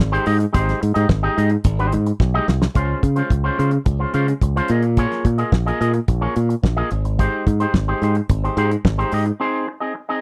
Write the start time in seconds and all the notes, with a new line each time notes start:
0.00 G#1, snare
0.12 G#3 D#4 G4 C5, closed hi-hat
0.26 G#2 G#3 D#4 G4 D#5, open hi-hat
0.39 muted clean electric guitar stroke, closed hi-hat
0.53 G#1 G#3 D#4 G4 C5, kick, closed hi-hat
0.69 snare, closed hi-hat
0.81 G#2, muted clean electric guitar stroke, closed hi-hat
0.94 G#2 G#3 D#4 G4 D#5, closed hi-hat
1.09 G#1, muted clean electric guitar stroke, kick, snare
1.23 G#3 D#4 G4 D#5
1.37 G#2 G#3 D#4 G4 D#5, closed hi-hat
1.50 muted clean electric guitar stroke, closed hi-hat
1.64 G#1, muted clean electric guitar stroke, kick, closed hi-hat
1.79 G#3 D#4 G4 C5, closed hi-hat
1.92 G#2, muted clean electric guitar stroke, closed hi-hat
2.06 muted clean electric guitar stroke, closed hi-hat
2.20 B1, muted clean electric guitar stroke, kick, snare
2.34 G#3 D#4 G4 D#5
2.48 C2, muted clean electric guitar stroke, snare
2.62 muted clean electric guitar stroke, snare
2.75 C#2 G#3 C#4 F4 C5, kick, closed hi-hat
3.03 C#3, muted clean electric guitar stroke, kick, closed hi-hat
3.16 G#3 C#4 F4 C5, closed hi-hat
3.30 C#2, muted clean electric guitar stroke, kick, closed hi-hat
3.44 G#3 C#4 F4 C5
3.58 C#3 G#3 C#4 F4 C5, closed hi-hat
3.71 muted clean electric guitar stroke, closed hi-hat
3.85 C#2, muted clean electric guitar stroke, kick, closed hi-hat
3.99 G#3 C#4 F4 C5
4.13 C#3 G#3 C#4 F4 C5, closed hi-hat
4.28 muted clean electric guitar stroke, closed hi-hat
4.42 C#2, muted clean electric guitar stroke, kick, closed hi-hat
4.56 G#3 C#4 F4 C5, closed hi-hat
4.68 A#2 A#3 F4 G#4 D#5, closed hi-hat
4.83 muted clean electric guitar stroke, closed hi-hat
4.97 A#3 F4 G#4 C#5, kick, closed hi-hat
5.12 snare, closed hi-hat
5.25 A#2, kick, closed hi-hat
5.38 A#3 F4 G#4 D#5, closed hi-hat
5.52 A#1, muted clean electric guitar stroke, kick, snare
5.66 A#3 F4 G#4 D#5, closed hi-hat
5.80 A#2 A#3 F4 G#4 D#5, closed hi-hat
5.94 muted clean electric guitar stroke, closed hi-hat
6.08 A#1, muted clean electric guitar stroke, kick, closed hi-hat
6.21 A#3 F4 G#4 C#5
6.36 A#2, muted clean electric guitar stroke, closed hi-hat
6.49 muted clean electric guitar stroke, closed hi-hat
6.63 A#1, muted clean electric guitar stroke, kick, snare
6.76 A#3 F4 G#4 D#5
6.90 G#1, muted clean electric guitar stroke, closed hi-hat
7.05 muted clean electric guitar stroke, closed hi-hat
7.19 G#3 D#4 G4 C5, kick, closed hi-hat
7.47 G#2, muted clean electric guitar stroke, kick, closed hi-hat
7.60 G#3 D#4 G4 C5, closed hi-hat
7.74 G#1, muted clean electric guitar stroke, kick, snare
7.88 G#3 D#4 G4 C5
8.02 G#2 G#3 D#4 G4 C5, closed hi-hat
8.15 muted clean electric guitar stroke, closed hi-hat
8.29 G#1, muted clean electric guitar stroke, kick, closed hi-hat
8.44 G#3 D#4 G4 C5, closed hi-hat
8.57 G#2 G#3 D#4 G4 C5, closed hi-hat
8.71 muted clean electric guitar stroke, closed hi-hat
8.85 G#1, muted clean electric guitar stroke, kick, snare
8.98 G#3 D#4 G4 C5, closed hi-hat
9.12 G#2 G#3 D#4 G4 D#5, open hi-hat
9.26 muted clean electric guitar stroke, closed hi-hat
9.40 C4 D#4 G#4 C5
9.67 muted clean electric guitar stroke
9.80 C4 D#4 G#4 D#5
9.94 muted clean electric guitar stroke
10.09 C4 D#4 G#4 D#5